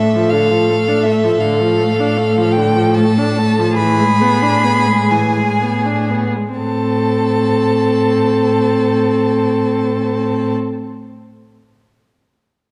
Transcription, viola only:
0.00 0.17 A3 soft
0.16 0.34 F3 soft
0.33 0.53 D3 soft
0.51 0.72 F3 soft
0.70 0.90 A3 soft
0.89 1.07 D4 soft
1.06 1.26 A3 soft
1.24 1.41 F3 soft
1.42 1.62 D3 soft
1.61 1.81 F3 soft
1.80 2.01 A3 soft
2.00 2.19 D4 soft
2.18 2.39 A3 soft
2.37 2.59 F3 soft
2.58 2.77 D3 soft
2.76 2.99 F3 soft
2.97 3.20 A3 soft
3.18 3.41 D4 soft
3.39 3.61 A3 soft
3.59 3.79 F3 soft
3.79 4.02 E3 soft
4.01 4.23 G#3 soft
4.22 4.44 B3 soft
4.43 4.67 D4 soft
4.65 4.90 B3 soft
4.88 5.13 G#3 soft
5.12 5.38 E3 soft
5.37 5.63 G#3 soft
5.62 5.87 B3 soft
5.85 6.12 D4 soft
6.11 6.38 B3 soft
6.37 6.58 G#3 soft
6.59 10.53 C4 soft

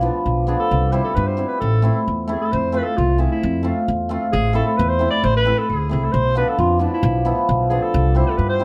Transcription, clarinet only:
0.00 0.11 E4 medium
0.48 0.59 G#4 medium
0.60 0.94 A4 medium
0.93 1.04 C5 medium
1.04 1.17 A4 medium
1.16 1.28 B4 medium
1.27 1.48 C5 medium
1.48 1.60 B4 medium
1.60 2.03 A4 medium
2.32 2.41 G#4 medium
2.41 2.54 A4 medium
2.53 2.76 C5 loud
2.75 2.81 B4 medium
2.82 2.98 A4 medium
2.82 2.85 B4 medium
2.97 3.21 F4 medium
3.20 3.31 E4 medium
3.32 3.74 E4 medium
4.33 4.54 G#4 loud
4.55 4.66 A4 loud
4.67 4.79 A4 medium
4.78 4.90 B4 medium
4.89 5.10 C5 medium
5.11 5.25 D5 loud
5.24 5.35 C5 loud
5.37 5.60 B4 loud
5.59 5.71 A4 medium
5.69 5.91 G#4 medium
5.91 6.06 G#4 medium
6.04 6.14 A4 medium
6.12 6.36 C5 loud
6.37 6.51 B4 medium
6.49 6.59 A4 medium
6.60 6.81 F4 medium
6.80 6.92 E4 medium
6.94 7.35 E4 medium
7.70 7.84 G#4 medium
7.82 8.18 A4 medium
8.17 8.26 C5 medium
8.27 8.39 A4 medium
8.38 8.48 B4 medium
8.49 8.64 C5 loud

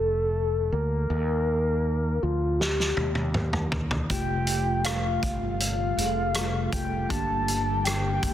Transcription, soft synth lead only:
0.00 0.74 A4 medium
0.72 2.24 A#4 medium
2.23 2.61 F4 medium
2.60 3.72 G4 medium
4.10 4.86 G5 loud
4.85 5.60 F5 medium
5.61 6.69 F5 medium
6.72 7.07 G5 medium
7.10 7.86 A5 loud
7.84 8.34 G5 medium

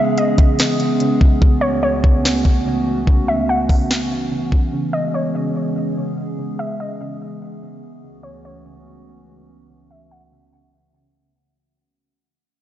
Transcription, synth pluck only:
0.00 0.17 E5 medium
0.18 1.38 D#5 medium
1.61 1.81 C#5 medium
1.83 3.03 C#5 medium
3.28 3.48 E5 medium
3.49 4.28 F#5 medium
4.93 5.13 D#5 medium
5.14 6.34 C#5 medium
6.59 6.79 E5 medium
6.80 8.00 D#5 medium
8.23 8.44 C#5 medium
8.45 9.65 C#5 medium
9.91 10.10 E5 medium
10.11 10.90 F#5 medium

